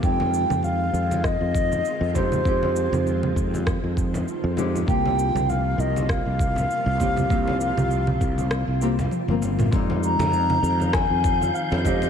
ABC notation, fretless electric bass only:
X:1
M:4/4
L:1/16
Q:"Swing 16ths" 1/4=99
K:Fm
V:1 name="Fretless electric bass" clef=bass
F,,3 F,,3 F,,3 F,,3 z F,,3 | F,,3 F,,3 F,,3 F,,3 z F,,3 | C,,3 C,,3 C,,3 C,,3 z C,,3 | C,,3 C,,3 C,,3 C,,3 z G,,,3 |
F,,3 F,,3 F,,3 F,,3 z F,,3 |]